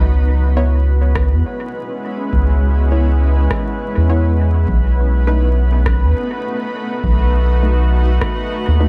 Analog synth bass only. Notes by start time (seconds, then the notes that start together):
Already playing: C#2
1.33 E2
2.33 C#2
3.97 E2
4.68 B1
6.04 D#2
7.04 B1
8.68 D#2